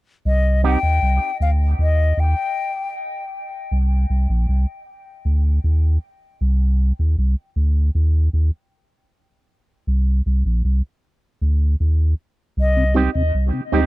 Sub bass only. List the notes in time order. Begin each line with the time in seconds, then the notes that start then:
0.25 C2
0.83 D#2
1.02 C2
1.40 D2
1.79 D#2
2.17 D#2
3.72 C2
4.10 C2
4.30 A#1
4.49 C2
5.25 D2
5.64 D#2
6.41 C2
6.99 D#2
7.18 C2
7.56 D2
7.95 D#2
8.33 D#2
9.87 C2
10.26 C2
10.45 A#1
10.64 C2
11.41 D2
11.80 D#2
12.57 C2
13.15 D#2
13.34 C2
13.73 D2